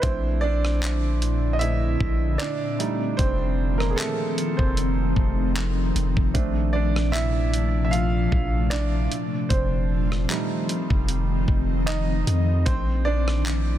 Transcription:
0.02 A#1 A#2 D3 A3 C4 D4 E4 C5, kick, closed hi-hat
0.41 D4 D5
0.65 cross-stick
0.83 clap, closed hi-hat
1.22 closed hi-hat
1.53 D#5
1.59 A3 C4 D4 E4 E5, closed hi-hat
2.00 A#1, kick
2.38 D4 D5, clap, closed hi-hat
2.79 D#3 F3 G3 A3 D#4 F4, closed hi-hat
3.17 F1 C4 C5, kick, closed hi-hat
3.78 A#3 A#4, cross-stick
3.90 G#4
3.96 A3 A4, clap, closed hi-hat
4.37 D#4, closed hi-hat
4.57 F1 C4 C5, kick
4.77 closed hi-hat
5.16 F1, kick
5.56 clap, closed hi-hat
5.95 F1, closed hi-hat
6.17 F1, kick
6.34 A#1 A#2 C3 F3 A3 C4 D4, kick, closed hi-hat
6.73 D4 D5
6.96 cross-stick
7.12 E4 E5, clap, closed hi-hat
7.54 closed hi-hat
7.85 E5
7.91 F4 F5, closed hi-hat
8.32 A#1, kick
8.70 D4 D5, clap, closed hi-hat
9.11 D#3 F3 C4 F4, closed hi-hat
9.49 F1 C4 C5, kick, closed hi-hat
10.12 cross-stick
10.29 G3 A3 D#4, clap, closed hi-hat
10.69 D#4, closed hi-hat
10.90 F1, kick
11.09 closed hi-hat
11.48 F1, kick
11.86 D#4 D#5, clap, closed hi-hat
12.27 F2, closed hi-hat
12.66 A#1 A#2 D3 C4 E4 C5, kick, closed hi-hat
13.05 D4 D5
13.28 cross-stick
13.46 clap, closed hi-hat

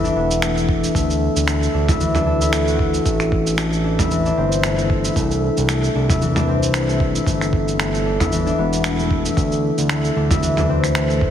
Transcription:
Already playing: G1 E3 A3 C4 E4
0.04 D4, shaker
0.16 E1 B3
0.31 shaker
0.42 A3, finger snap, shaker
0.57 A3, shaker
0.69 kick
0.84 shaker
0.95 D2 A3, kick, shaker
1.10 shaker
1.36 D2, shaker
1.47 A3, finger snap, shaker
1.63 shaker
1.74 D2 D4
1.88 E4, kick, mid tom, shaker
2.00 E3, shaker
2.15 D4, mid tom, shaker
2.27 A4
2.41 E4, shaker
2.53 A3, finger snap, shaker
2.67 F#4, shaker
2.79 kick
2.94 shaker
3.05 A1 A3, kick, shaker
3.20 finger snap, shaker
3.32 kick
3.47 shaker
3.58 A3, finger snap, shaker
3.73 shaker
3.84 D4
3.99 E4, kick, mid tom, shaker
4.11 E3, shaker
4.26 D4, shaker
4.37 G1 C4
4.52 shaker
4.63 A3, finger snap, shaker
4.78 A3, shaker
4.90 kick
5.05 E4, shaker
5.16 C2 A3, kick, shaker
5.31 shaker
5.57 C2, shaker
5.69 A3, finger snap, shaker
5.84 shaker
5.95 C2 D4
6.09 E4, kick, mid tom, shaker
6.21 E3, shaker
6.36 D4, mid tom, shaker
6.48 C4
6.63 shaker
6.74 A3, finger snap, shaker
6.89 A3, shaker
7.00 kick
7.15 E4, shaker
7.26 G1 A3, kick, shaker
7.41 finger snap, shaker
7.53 kick
7.68 shaker
7.79 A3, finger snap, shaker
7.94 shaker
8.06 D4
8.20 E4, kick, mid tom, shaker
8.32 E3, shaker
8.46 D4, shaker
8.58 E1 B3
8.73 shaker
8.84 A3, finger snap, shaker
8.99 A3, shaker
9.11 kick
9.25 E4, shaker
9.37 D2 A3, kick, shaker
9.52 shaker
9.78 D2, shaker
9.89 A3, finger snap, shaker
10.04 shaker
10.16 D2 D4
10.31 E4, kick, mid tom, shaker
10.42 E3, shaker
10.57 D4, mid tom, shaker
10.69 C4
10.84 finger snap, shaker
10.95 A3, finger snap, shaker
11.10 A3, shaker
11.21 D1, kick

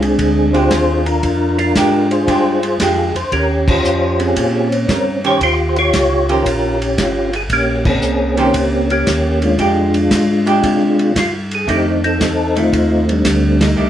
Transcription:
Already playing: C2 G#3
0.01 C4 D4 G#4, ride
0.18 D2, kick, ride
0.53 G#3 D4 F4 G4 G#4 C5, ride
0.71 D#2, kick, snare, hi-hat pedal, ride
0.98 G#4
1.06 D4 F4 A#4, ride
1.23 F2, kick, ride
1.59 D4 F4 A#4, ride
1.75 G#2 G#3 D4 G4, kick, snare, hi-hat pedal, ride
2.11 F4 G#4 C5, ride
2.27 G2 G#3 D4 G4, kick, ride
2.63 ride
2.80 F2 G#3 D4 G4 G#4, kick, snare, hi-hat pedal, ride
3.15 F2 C5, ride
3.32 D#2 C#4 G4 A#4, kick, ride
3.68 F4 G4 C5, kick, crash
3.84 F2, hi-hat pedal
4.20 C4 C#4 G#4, ride
4.36 A#2, kick, ride
4.72 ride
4.88 G2 A#4, kick, snare, hi-hat pedal, ride
5.24 D#3 C#4 G4 C5 C#5, ride
5.41 D#2 F4 G4 C5, kick, ride
5.69 C5
5.76 F4 G4 C#5, ride
5.93 C#2, kick, snare, hi-hat pedal, ride
6.29 D#3 C#4 G4 A#4 C5, ride
6.45 A#1, kick, ride
6.82 ride
6.98 G1 F4, kick, snare, hi-hat pedal, ride
7.33 G#4, ride
7.50 A#1 A#3 C#4 G4, kick, ride
7.78 G4
7.85 C#4, kick, crash
7.89 C4 G#4
8.02 C2, hi-hat pedal
8.37 D#3 A#3 C#4 G4 C5, ride
8.54 C#2, kick, ride
8.90 A#3 C#4 G4, ride
9.06 D#2, kick, snare, hi-hat pedal, ride
9.42 G#3 D4 F4, ride
9.58 F2 G#3 D4 G4, kick, ride
9.94 ride
10.11 G#2, kick, snare, hi-hat pedal, ride
10.46 G#3 D4 G4, ride
10.63 C3, kick, ride
10.99 ride
11.16 G2 F4, kick, snare, hi-hat pedal, ride
11.51 G#4, ride
11.67 F2 D#3 A3 C4 D4 D#4, kick, ride
11.72 G4
12.04 C4 D#4 A4, ride
12.20 E2, kick, snare, hi-hat pedal, ride
12.56 D#3 A3 C4 F4, ride
12.73 D#2, kick, ride
13.09 G3 A3, ride
13.13 D4
13.25 D2, kick, snare, hi-hat pedal, ride
13.61 G3 A3 D#4, snare, ride
13.76 C2 D#3 A3 D4

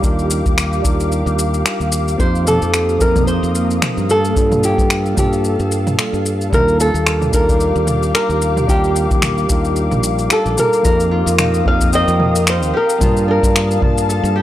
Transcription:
Already playing: D4 D#4 F4 G4 A#4 F5 D6
0.00 D#2 G3 D4 D#4, kick, shaker
0.04 F4 A#4
0.19 shaker
0.30 shaker
0.46 D#2, kick, shaker
0.58 finger snap, shaker
0.73 shaker
0.82 D#2 G3 D4 D#4 F4, kick, shaker
0.86 A#4
1.00 shaker
1.12 shaker
1.26 D#2, shaker
1.39 shaker
1.54 shaker
1.66 finger snap, shaker
1.80 D#2, shaker
1.92 shaker
2.08 shaker
2.16 F2 F3 A#3 C4 D#4 C5, kick, shaker
2.20 C5 D#6
2.35 shaker
2.47 A4, mid tom, shaker
2.62 F2, shaker
2.74 finger snap, shaker
2.89 shaker
2.98 F2 F3 A#3 C4 D#4 A#4, kick, shaker
3.03 A#4
3.16 kick, mid tom, shaker
3.27 C5, shaker
3.43 F2, shaker
3.55 shaker
3.71 shaker
3.82 finger snap, mid tom, shaker
3.97 G2, shaker
4.09 A4, shaker
4.25 shaker
4.34 G2 G3 A#3 D4 F4, kick, shaker
4.38 A4
4.52 mid tom, shaker
4.63 G4, shaker
4.78 G2, kick, shaker
4.90 finger snap, shaker
5.06 shaker
5.15 G2 G3 A#3 D4 F4 G4, kick, mid tom, shaker
5.19 A4
5.33 shaker
5.44 shaker
5.60 G2, shaker
5.72 shaker
5.87 mid tom, shaker
5.99 finger snap, shaker
6.13 G2, shaker
6.26 shaker
6.41 shaker
6.50 D#2 G3 A#3 D4 D#4 F4 G4 A#4 F5 D6, kick, mid tom, shaker
6.68 shaker
6.80 A4, shaker
6.94 D#2, shaker
7.07 finger snap, shaker
7.22 mid tom, shaker
7.31 D#2 G3 D4 D#4 F4 A#4, kick, shaker
7.36 A#4
7.49 kick, shaker
7.60 shaker
7.76 D#2, shaker
7.87 mid tom, shaker
8.03 shaker
8.15 A#4, finger snap, shaker
8.29 D#2, shaker
8.42 shaker
8.57 mid tom, shaker
8.67 D#2 G3 D4 D#4 F4 G4 A#4, kick, shaker
8.84 shaker
8.96 shaker
9.11 D#2, kick, shaker
9.22 finger snap, mid tom, shaker
9.38 shaker
9.48 D#2 G3 D4 D#4 F4, kick, shaker
9.52 A#4
9.65 shaker
9.76 shaker
9.91 A#1, mid tom, shaker
10.03 shaker
10.19 shaker
10.30 A4, finger snap, shaker
10.46 A#1, shaker
10.57 A#4, mid tom, shaker
10.73 shaker
10.83 F2 F3 A#3 C4 D#4 A#4 F5 D#6, kick, shaker
11.00 shaker
11.11 F4
11.26 F2, shaker
11.39 D#4, finger snap, mid tom, shaker
11.54 shaker
11.63 F2 F3 A#3 C4 D#4, kick
11.67 A#4 F5
11.81 kick, shaker
11.93 C4 D#5, shaker
12.08 F2, shaker
12.20 mid tom
12.35 shaker
12.47 A#4 C5, finger snap, shaker
12.62 D#2, shaker
12.74 G4 A#4 A5
12.89 shaker
12.99 G2 G3 A#3 D4 F4, kick, mid tom, shaker
13.03 A5
13.17 shaker
13.28 D4 A#4
13.43 G2, kick, shaker
13.56 finger snap, shaker
13.71 shaker
13.80 G2 G3 A#3 D4 F4 A5, kick, mid tom
13.98 shaker
14.09 A4, shaker
14.24 G2, shaker
14.36 G4

